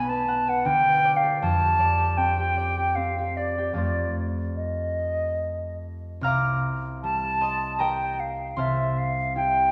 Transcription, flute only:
0.00 0.11 G#5 medium
0.09 0.50 A5 medium
0.49 0.67 F#5 medium
0.66 1.18 G5 medium
1.16 1.41 F5 medium
1.42 2.19 A5 medium
2.17 2.97 G5 medium
2.95 3.38 F5 medium
3.37 3.75 D5 medium
3.76 4.27 D5 medium
4.56 5.77 D#5 medium
7.03 7.81 A5 medium
7.80 8.21 G5 medium
8.20 8.58 F5 medium
8.58 8.99 E5 medium
8.98 9.36 F5 medium
9.37 9.72 G5 medium

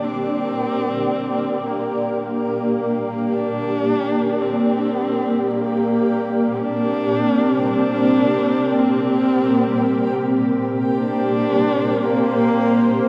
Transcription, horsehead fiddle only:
0.04 1.68 C4 medium
1.67 2.21 A#3 medium
2.22 3.34 A#3 medium
3.33 4.43 D4 loud
4.42 5.52 C4 medium
5.51 6.62 A#3 medium
6.60 7.69 D4 medium
7.70 8.80 D4 medium
8.79 10.42 C4 medium
10.98 12.06 D4 medium
12.05 13.09 A#3 medium

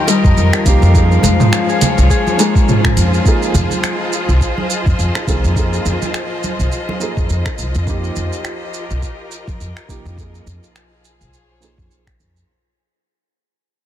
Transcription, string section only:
0.00 12.48 F3 medium
0.00 12.48 F4 medium
0.00 0.94 G4 medium
0.00 1.88 A#4 medium
0.00 1.88 D#5 medium
1.34 8.80 C5 medium
1.52 3.26 C#5 medium
1.57 7.87 G#4 medium
3.82 11.11 D#5 medium
8.05 10.18 G4 medium
8.84 10.94 A#4 medium
10.64 12.49 G#4 medium
11.21 12.48 C5 medium
11.21 12.49 C#5 medium

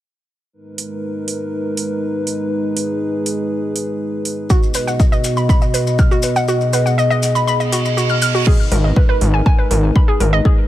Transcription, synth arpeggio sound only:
4.50 4.60 F#4 loud
4.75 4.81 B4 medium
4.87 4.94 F#5 medium
5.00 5.04 D#5 medium
5.12 5.19 D#5 loud
5.37 5.43 B5 medium
5.49 5.59 B5 medium
5.62 5.68 D#5 medium
5.74 5.81 B4 medium
5.99 6.09 F6 medium
6.11 6.21 F#4 loud
6.24 6.30 B4 medium
6.36 6.40 F#5 loud
6.48 6.58 F#4 medium
6.73 6.80 B4 medium
6.86 6.92 F#5 medium
6.98 7.02 D#5 medium
7.10 7.17 D#5 loud
7.35 7.42 B5 medium
7.47 7.57 B5 medium
7.60 7.67 D#5 medium
7.72 7.76 F#4 medium
7.97 8.04 F#4 medium
8.10 8.14 F6 medium
8.22 8.26 F6 medium
8.35 8.38 F#4 medium
8.47 8.57 G#4 loud
8.72 8.78 A#4 medium
8.84 8.91 D#5 medium
8.96 9.00 B4 medium
9.09 9.15 B4 loud
9.34 9.40 G#5 medium
9.46 9.56 G#5 loud
9.59 9.65 B4 medium
9.71 9.77 A#4 medium
9.96 10.05 B5 medium
10.08 10.18 G#4 loud
10.20 10.27 A#4 medium
10.33 10.37 D#5 loud
10.45 10.55 G#4 loud

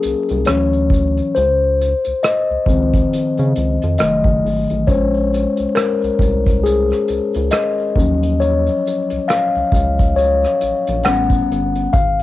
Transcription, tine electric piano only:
0.00 0.49 G#4 medium
0.00 0.49 A#4 medium
0.46 1.31 E3 soft
0.46 1.32 F#3 soft
0.46 1.32 C#4 medium
0.46 1.37 C#5 medium
1.35 2.26 C5 medium
2.23 3.98 D#5 medium
2.69 3.30 D#3 soft
2.69 3.30 F3 soft
2.69 3.30 C4 medium
3.99 4.84 D#3 soft
3.99 4.84 F#3 soft
3.99 4.85 A3 medium
3.99 4.90 D#5 medium
4.87 7.93 G#3 soft
4.87 7.93 C#4 soft
4.87 7.94 C5 medium
4.87 5.78 C#5 medium
5.75 6.66 A#4 medium
6.64 7.55 G#4 medium
7.51 8.36 D#5 medium
7.97 8.58 F3 soft
7.97 8.59 F#3 soft
7.97 8.59 C#4 medium
8.40 9.31 C#5 medium
9.28 10.19 F5 medium
10.16 11.08 C#5 medium
11.05 11.90 G3 soft
11.05 11.90 B3 soft
11.05 11.90 C#4 medium
11.05 11.89 F#5 medium
11.93 12.23 F5 loud

